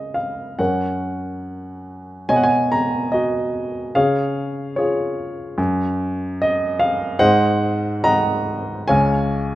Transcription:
grand piano
Already playing: C#3 D#5
0.14 F5
0.59 F#2 A#4 C#5 F#5
2.29 B2 C#5 D#5 G#5
2.36 F#5
2.43 G#5
2.72 A#5
3.12 F#4 D#5
3.95 C#3 G#4 C#5 F5
4.76 F4 G#4 C#5
5.58 F#2
6.42 D#5
6.79 F5
7.19 G#2 C5 D#5 F#5
8.04 D#5 F#5 A#5
8.88 C#2 C#5 F5 G#5

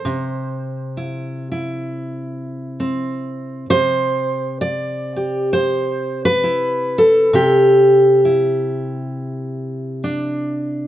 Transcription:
steel-string acoustic guitar
Already playing: C5
0.05 C3
0.97 E4
1.52 E4
2.80 C4
3.70 C3 C5
4.61 D5
5.16 G4
5.53 C5
6.25 B4
6.44 E4
6.98 A4
7.33 C3 G4
8.25 E4
10.04 D4

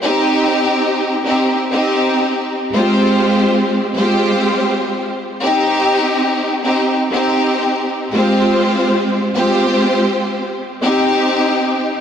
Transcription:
string section
0.02 C4 D#4 G4
1.24 C4 D#4 G4
1.71 C4 D#4 G4
2.73 G#3 C4 F4 G4 C5
3.95 G#3 C4 F4 G4 C5
5.41 C4 D#4 G4
6.63 C4 D#4 G4
7.11 C4 D#4 G4
8.12 G#3 C4 F4 G4 C5
9.35 G#3 C4 F4 G4 C5
10.81 C4 D#4 G4

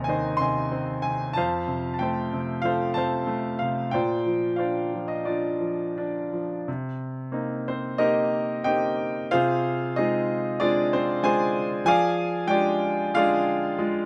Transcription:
grand piano
Already playing: D#2 C3 C4 D#5 G#5 A#5 C6
0.04 G#5
0.08 D#3 C5 D#5
0.37 C3 C6
0.41 D#5 G#5
0.72 C4
1.02 C3 G#5
1.33 F2 C5 F5 A5
1.68 C3
1.94 A5
1.99 A3 C5 G5
2.33 C3
2.62 F3 A4 C5 F5
2.94 C3 C5 F5 A5
3.27 A3
3.59 C3 F5
3.91 A#2 C5 D5 G5
4.26 F3
4.56 C5 D5 F5
4.60 D4
4.94 F3
5.08 D#5
5.25 D4 F4 D5
5.60 F3
5.98 D4
6.33 F3
6.68 C3
7.32 A#3 C4 D#4
7.68 C4 C5
7.98 A#3 C4 D#4 G4 A#4 D#5
8.64 A#3 C4 D#4 G4 D#5 G5
9.31 C3 F4 G#4 C5 F5
9.96 G#3 C4 D#4 F4 G#4 D#5
10.60 G#3 C4 D4 F4 G#4 D5
10.93 C4 C5
11.23 G#3 C4 F4 G#4 C5 G#5
11.85 F3 G#4 D5 F5 G#5
12.47 G#3 D4 F4 G4 D5 G5
13.14 G#3 D4 F4 G#4 D5 F5
13.78 G#3 F4

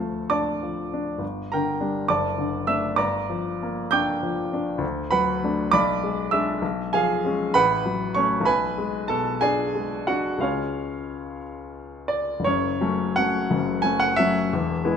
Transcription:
grand piano
Already playing: D2 F3 A4 F5 A5
0.00 A3
0.30 D4 D5 A5 D6
0.62 F3
0.94 D4
1.18 G1
1.52 D3 A#4 G5 A#5
1.80 G3 D4
2.08 F#1 D5 A5 D6
2.38 D3
2.67 A3 D4 E5 E6
2.96 G1 D5 A#5 D6
3.29 F3
3.63 A#3
3.91 D4 G5 D6 G6
4.23 F3
4.53 D4
4.78 D2
5.11 F#3 B4 F#5 B5
5.44 A3 D4
5.71 B1 D5 B5 D6
6.04 G#3
6.31 G#3 D4 E5 E6
6.62 B1
6.93 F3 G#4 F5 G#5
7.25 G#3 C#4
7.54 A1 B4 F#5 B5
7.86 F#3
8.15 A3 C#4 C#5 C#6
8.41 B1
8.45 B4 G#5 B5
8.78 G#3
9.08 B2 A4 A5
9.41 D4 G#4 D5 G#5
9.75 G#3
10.07 D4 F#4 F#5
10.38 C#2 G#3 C#4 F4 F5
10.43 C#5
12.08 D5
12.40 F#1
12.44 F#2 C#5
12.81 F#3 A3 C#4
13.16 F#3 A3 C#4 F#5
13.51 F#1 F#2
13.82 F#3 A3 C#4 G#5
14.00 F#5
14.16 F#3 A3 C#4 E5
14.53 E1 E2
14.85 G#3 B3 E4

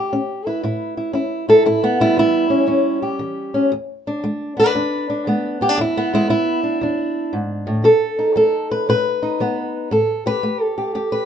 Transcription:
steel-string acoustic guitar
Already playing: G4
0.13 C#4
0.47 E4 B4
0.63 A2 E4
0.97 E4
1.13 C#4 E4
1.49 E4 A4
1.66 A2 E4
1.84 B3
2.00 G3 E4
2.17 E3 E4
2.50 C#4
2.67 E2 C#4
3.02 G4
3.19 E3
3.54 C#4
3.72 E2
4.07 D4
4.24 G#3
4.57 B3 B4
4.66 D4
4.75 E2 D4
5.10 D4
5.27 G#3 B3
5.61 B3 G4
5.69 D4
5.78 E2 E4
5.97 B3
6.14 G#3 E4
6.29 G#3 E4
6.63 D4
6.81 E2 D4
7.33 G#2
7.67 A2
7.84 B2 A4
8.19 D#4
8.36 F#3 A4
8.71 B4
8.89 B2 B4
9.23 D#4
9.40 F#3 B3
9.91 A2 A4
10.26 G4 B4
10.43 A3
10.61 A4
10.78 G4
10.95 E2 G4
11.12 B4

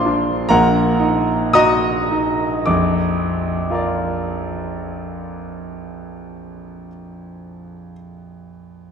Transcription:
grand piano
Already playing: A#1 A#2 D4 F4 C5 D5 A#5 C6 D6
0.06 D4
0.49 A#1 A#2 A#4 F#5 A#5
1.00 D#4
1.53 F#4 D#5 A#5 D#6
2.11 D#4
2.66 A#1 F2 D6
3.70 F4 A#4
3.74 D5

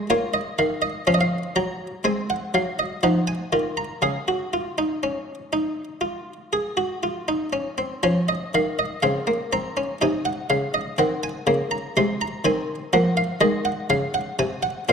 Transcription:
harpsichord
0.10 A#3 F4 C#5
0.34 D#5
0.59 D#3 F5
0.82 D#5
1.07 F3 C#4 F5
1.14 D#5
1.21 F5
1.56 F#3 A#5
2.04 G#3 C4 G#5
2.30 F#5
2.54 F#3 F5
2.79 D#5
3.03 F3 D#4 F#5
3.27 G#5
3.53 D#3 F4
3.77 A#5
4.02 C#3 G#4 F5
4.28 F#4
4.53 F4
4.78 D#4
5.03 C#4
5.53 D#4
6.01 F4
6.53 G#4
6.77 F#4
7.03 F4
7.28 D#4
7.53 C#4
7.78 C4
8.03 F3 C#4 C#5
8.29 D#5
8.54 D#3 F5
8.79 D#5
9.03 C#3 C4 F5
9.27 A#3
9.53 C4 A#5
9.77 C#4
10.01 C3 D#4 G#5
10.25 F#5
10.50 C#3 F5
10.74 D#5
10.98 D#3 C4 F#5
11.23 G#5
11.47 C#3 A#3
11.71 A#5
11.97 C3 G#3 C6
12.21 A#5
12.44 D#3 C4 G#5
12.93 F3 A#3 F#5
13.17 F5
13.41 D#3 G#3 D#5
13.65 F#5
13.90 C#3 F5
14.14 F#5
14.39 C3 G#5
14.63 F#5
14.89 A#2 C4 F5

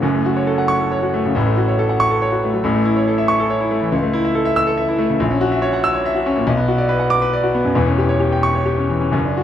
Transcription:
grand piano
0.02 F#1 F#2
0.14 A3
0.26 F#4
0.37 C#5
0.47 A4
0.58 F#5
0.68 C#6
0.80 A4
0.92 C#5
1.03 F#4
1.14 A3
1.26 C#3
1.35 A1 A2
1.47 A3
1.57 F#4
1.68 C#5
1.79 A4
1.89 F#5
2.00 C#6
2.11 A4
2.22 C#5
2.32 F#4
2.44 A3
2.53 F#3
2.64 A1 A2
2.75 A3
2.85 E4
2.96 C#5
3.08 A4
3.18 E5
3.28 C#6
3.40 A4
3.50 C#5
3.60 E4
3.71 A3
3.82 E3
3.92 C#2
4.03 A3
4.13 E4
4.25 E5
4.35 A4
4.45 E5
4.56 E6
4.67 A4
4.78 E5
4.88 E4
4.99 A3
5.10 C#3
5.20 A#1
5.31 C#4
5.41 F#4
5.52 E5
5.62 C#5
5.73 F#5
5.84 E6
5.94 C#5
6.06 E5
6.15 F#4
6.26 C#4
6.36 A#2
6.47 B1
6.57 B3
6.68 F#4
6.78 D5
6.89 B4
7.00 F#5
7.10 D6
7.22 B4
7.33 D5
7.44 F#4
7.55 B3
7.65 F#2
7.75 E1 E2
7.87 C#4
7.98 G4
8.09 C#5
8.20 G4
8.32 G5
8.43 C#6
8.55 C#5
8.66 G4
8.78 C#4
8.90 E3
9.01 C#4
9.12 F#1 F#2
9.25 D4
9.37 F#4

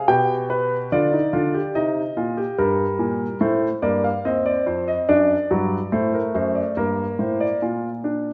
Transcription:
grand piano
0.08 B2 G4 G5
0.50 B4
0.92 D3 F4 D5
1.13 D#4
1.33 D3 F4
1.54 G4
1.75 C3 D#4 D#5
2.17 A#2 F4
2.37 G4
2.58 G2 G3 A#4
2.99 A#2
3.41 A2 A3 C5
3.82 G2 A#3 D5
4.04 F5
4.25 D#2 C4 D#5
4.46 D5
4.66 F2 C5
4.88 D#5
5.09 F#2 D4 D5
5.51 G2 F#3
5.92 A2 A3 C5
6.14 A#4
6.35 F#2 C5
6.55 D5
6.77 G2 A#3 A#4
7.19 A2 C5
7.40 D5
7.62 A#2 F4
8.04 D4

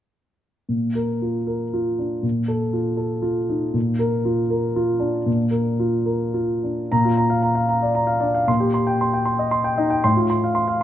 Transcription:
grand piano
0.69 A#2
0.95 A#4
1.22 F4
1.47 A#4
1.74 F4
1.99 D4
2.23 A#2
2.48 A4
2.73 F4
2.97 A4
3.22 F4
3.49 D#4
3.74 A#2
3.99 A#4
4.25 F4
4.50 A#4
4.76 F4
5.00 D4
5.26 A#2
5.51 A#4
5.80 F4
6.06 A#4
6.34 F4
6.64 D4
6.92 A#2 A#5
7.05 F4
7.17 A#5
7.30 F5
7.43 A#5
7.55 F5
7.69 A#5
7.82 D5
7.95 A#5
8.07 F5
8.20 D4 D5
8.34 F5
8.47 A#2 C6
8.60 G4
8.74 C6
8.87 G5
9.01 C6
9.14 G5
9.25 C6
9.39 D#5
9.51 C6
9.64 G5
9.78 D#4 D#5
9.90 G5
10.04 A2 C6
10.17 F4
10.30 C6
10.44 F5
10.55 C6
10.68 F5

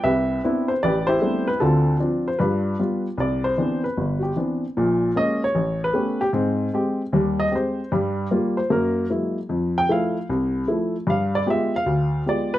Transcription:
grand piano
0.04 C2 G4 B4 E5
0.44 B3 C4 D4 E4
0.68 C5
0.83 A1 G4 B4 D5
1.07 E4 G4 C5
1.21 G3 A3 B3 C4 D4
1.48 B4
1.60 D2 D3 C4 F4 A4
2.00 F3 C4 D4
2.28 C5
2.39 G2 D4 F4 B4
2.79 G3 B3 F4
3.18 C2 D5
3.44 C5
3.58 E3 B3 C4 D4
3.84 B4
3.97 G1
4.19 F#4 G4
4.36 E3 B3 C4 D4
4.77 A#1 A#2
5.15 G#3 A#3 C#4 D#5
5.44 C#5
5.55 A1
5.84 B4
5.94 A3 B3 C#4 G4
6.21 G4
6.33 G#2 C4
6.73 G#3 C4 G4
7.13 D#2 G3
7.40 D#5
7.51 G#3 C4 G4
7.55 C5
7.92 G2 G3
8.31 G3 A#3 F4
8.57 C5
8.70 F#2 A#3 A#4
9.10 F#3 G#3 A#3 E4
9.49 F2
9.78 G5
9.89 F3 A3 E4 F5
10.29 C2
10.67 F3 A3 E4
11.07 G2 F5
11.35 D5
11.46 G#3 B3 F4 G4
11.50 E5
11.76 F5
11.86 D2
12.26 G#3 B3 F4 G4 D5
12.54 B4

